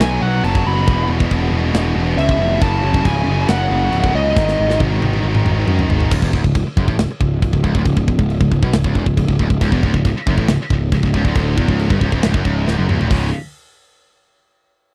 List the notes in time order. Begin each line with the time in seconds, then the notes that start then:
0.00 B1 B2 G#5, snare, crash
0.05 F#3
0.12 B2 F#3
0.20 B1 B2 F#3 F#5
0.27 B2 F#3
0.35 B2 F#3
0.43 F#1 B2 F#3 A5, crash
0.50 B2 F#3
0.55 B2 F#3, kick
0.64 F#1 B2 F#3 B5
0.73 B2 F#3
0.80 B2 F#3
0.88 E1 E2 B2, kick, crash
0.95 E2 B2
1.03 E2 B2
1.08 E1 E2 B2
1.19 E2 B2, kick
1.26 E2 B2
1.31 E1 E2 B2, kick, crash
1.41 E2 B2
1.48 E1 E2 B2
1.56 E2 B2
1.63 E2 B2
1.70 E1 E2 B2
1.75 snare, crash
1.79 E2 B2
1.86 E2 B2
1.95 E1 E2 B2
2.01 E2 B2
2.09 E2 B2
2.17 C#2 E2 B2 E5, crash
2.24 E2 B2
2.29 E2, kick
2.33 B2
2.39 F1 E2 B2
2.47 E2 B2
2.55 E2 B2
2.61 F#1 F#2 C#3 A5, kick, crash
2.69 F#2 C#3
2.78 F#2 C#3
2.83 F#1 F#2 C#3
2.93 F#2 C#3, kick
3.01 F#2 C#3
3.05 C#1 F#2 C#3 G#5, kick, crash
3.15 F#2 C#3
3.23 F#1 F#2 C#3
3.30 F#2 C#3
3.38 F#2 C#3
3.46 F#1 F#2 C#3 F#5, snare, crash
3.54 F#2 C#3
3.60 F#2 C#3
3.68 F#1 F#2 C#3
3.76 F#2 C#3
3.83 F#2 C#3
3.91 C#1 F#2 C#3, crash
3.98 F#2 C#3
4.04 F#2 C#3, kick
4.14 C#2 F#2 C#3 D#5
4.21 F#2 C#3
4.28 F#2 C#3
4.36 G#1 G#2 D#3, kick, snare
4.45 G#2 D#3, snare
4.53 G#2 D#3
4.59 G#1 G#2 D#3
4.67 G#2 D#3, snare
4.74 G#2 D#3
4.80 G#1 G#2 D#3, kick, high tom
4.91 G#2 D#3
4.99 G#1 G#2 D#3, high tom
5.05 G#2 D#3
5.13 G#2 D#3, mid tom
5.20 G#1 G#2 D#3
5.28 G#2 D#3
5.35 G#2 D#3, mid tom
5.44 G#1 G#2 D#3, mid tom
5.51 G#2 D#3
5.58 G#2 D#3
5.66 F#2 G#2 D#3, mid tom
5.74 G#2 D#3
5.79 G#2 D#3, floor tom
5.88 G#1 G#2 D#3, floor tom
5.96 G#2 D#3
6.00 G#2, floor tom
6.05 D#3
6.11 C#1 C#2, kick, crash
6.22 E1 E2, kick
6.33 D1 D2, kick
6.44 C#1 C#2, kick
6.55 C#1 C#2, kick, crash
6.65 muted picked electric bass stroke, muted distorted electric guitar stroke
6.77 F#1 F#2, kick
6.88 A1 A2, kick
6.98 C#1 C#2, snare, crash
7.08 muted picked electric bass stroke, muted distorted electric guitar stroke
7.21 C#1 C#2, kick
7.42 C#1 C#2, kick, crash
7.53 C#1 C#2, kick
7.64 C#1 C#2, kick
7.75 D1 D2, kick
7.85 C#1 C#2, kick, crash
7.97 C#1 C#2, kick
8.08 C#1 C#2, kick
8.19 C#1 C#2, kick
8.30 crash
8.40 C#1 C#2, kick
8.52 C#1 C#2, kick
8.62 B1 B2, kick
8.73 C#1 C#2, snare, crash
8.84 C#1 C#2, kick
8.95 E1 E2, kick
9.06 C#1 C#2, kick
9.17 C#1 C#2, kick, crash
9.28 C#1 C#2, kick
9.39 D1 D2, kick
9.50 C#1 C#2, kick
9.61 C#1 C#2, kick, crash
9.72 E1 E2, kick
9.83 D1 D2, kick
9.94 C#1 C#2, kick
10.05 C#1 C#2, kick, crash
10.15 muted picked electric bass stroke, muted distorted electric guitar stroke
10.27 F#1 F#2, kick
10.37 A1 A2, kick
10.41 A2
10.48 C#1 C#2, snare, crash
10.59 muted picked electric bass stroke, muted distorted electric guitar stroke
10.70 C#1 C#2, kick
10.92 C#1 C#2, kick, crash
11.03 C#1 C#2, kick
11.14 C#1 C#2, kick
11.24 D1 D2, kick
11.35 D1 D2, kick, crash
11.58 E1 E2, kick
11.68 C#1 C#2, kick
11.79 crash
11.90 G1 G2, kick
12.01 C#1 C#2, kick
12.12 D1 D2, kick
12.23 C#1 C#2, snare, crash
12.34 F#1 F#2, kick
12.45 C#1 C#2, kick
12.67 D1 D2, snare
12.77 F#1 F#2
12.89 C#1 C#2, mid tom
12.99 D1 D2, floor tom
13.10 C#1 C#2 G#2 C#3, kick, open hi-hat